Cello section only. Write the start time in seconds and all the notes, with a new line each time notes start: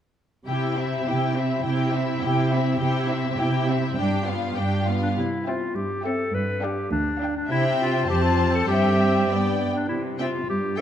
0.48 C3
1.06 C3
1.65 C3
2.22 C3
2.80 C3
3.38 C3
3.97 G2
4.56 G2
5.18 C3
5.76 G2
6.34 G2
6.92 D2
7.50 C3
8.10 F2
8.69 G2
9.30 G2
9.89 C3
10.48 G2